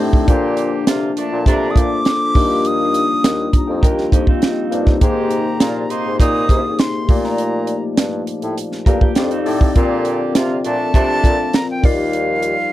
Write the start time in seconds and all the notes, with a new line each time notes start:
Already playing: D#3 A3 C4 D4 D#4
0.00 A2 G4 C5
0.13 kick
0.26 A#2 D3 F3 A#3 D4 F4 G4 A4 C5, kick, closed hi-hat
0.57 closed hi-hat
0.86 C3 D3 A#3 F4, snare, closed hi-hat
1.16 A#2 A3 D4 A5, closed hi-hat
1.32 A#2
1.46 A#2 C3 A3 D4 A#5, kick, closed hi-hat
1.71 D#6
1.75 A#2 A#3 D4 F4 A4 C5 D6, kick, closed hi-hat
2.05 snare, closed hi-hat
2.34 D#2 G3 A#3 D4 D#4 F4 G4, kick, open hi-hat
2.65 D#6, closed hi-hat
2.94 closed hi-hat
3.24 D#2, snare, closed hi-hat
3.53 A#5, kick, closed hi-hat
3.68 F2 G5
3.83 D#2 G4 A#4 G5, kick, closed hi-hat
3.98 snare
4.12 F2 A#3 D#4 F4 G4 C5, kick, closed hi-hat
4.27 C4 D#4 F5, kick
4.42 D#5, snare, closed hi-hat
4.71 G2 A#3 D#4 F4 G4 C5, closed hi-hat
4.87 kick, snare
5.01 G#2 A#2 C3 D#3 A#3 C4 D#4 G4 G#4 C5 A#5, kick, closed hi-hat
5.30 closed hi-hat
5.60 A#2 F3 D4 F4, snare, closed hi-hat
5.90 C3 A#3 D#4 C6, closed hi-hat
6.06 G#2
6.20 A#2 C3 A#3 D#4 D#6, kick, closed hi-hat
6.49 G#2 A#3 D#4 G4 G#4 A#4, kick, closed hi-hat
6.57 C5
6.79 C6, snare, closed hi-hat
7.08 A#2 F3 A3 F4 G4 D5, kick, open hi-hat
7.15 A#3
7.24 A#5, snare
7.38 closed hi-hat
7.67 closed hi-hat
7.97 G2, snare, closed hi-hat
8.27 closed hi-hat
8.42 A2, closed hi-hat
8.58 closed hi-hat
8.72 snare
8.86 G2 A#3 F4 G4 A4 A#4 F5 A#5, kick, closed hi-hat
9.01 G4, kick
9.15 F2 D#3 A3 C4 D4 D#4 F4 G4 A4 D5 G5, snare, closed hi-hat
9.31 C4 D#4 F5, closed hi-hat
9.45 A2 C4 D#4 G4 A4 D5, open hi-hat
9.61 kick
9.75 A#2 D3 F3 A#3 C4 F4 G4 A4 A#4 D5, kick, closed hi-hat
10.05 closed hi-hat
10.35 C3 D3 A#3 F4, snare, closed hi-hat
10.64 A#2 A3 D4 A5, closed hi-hat
10.94 A#2 C3 A3 D4, kick, closed hi-hat
11.23 A#2 C4 F4 A4 A#4 F5, kick, closed hi-hat
11.53 A#5, snare, closed hi-hat
11.71 G5
11.83 D#2 G3 D#4 F4 G4 A#4 D5 F5, kick, open hi-hat
12.13 closed hi-hat
12.42 closed hi-hat